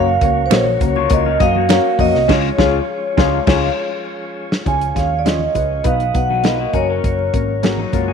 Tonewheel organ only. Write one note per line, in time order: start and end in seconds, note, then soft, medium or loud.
0.00 2.25 F#3 medium
0.00 2.25 A#3 medium
0.00 4.63 C#4 medium
2.30 4.64 F3 medium
2.30 4.65 G#3 medium
4.66 5.84 F3 medium
4.66 5.84 G#3 medium
4.66 5.84 C#4 medium
5.85 8.13 F#3 medium
5.85 6.74 B3 medium
5.85 6.74 D#4 medium
6.75 8.13 A#3 medium
6.75 8.13 C#4 medium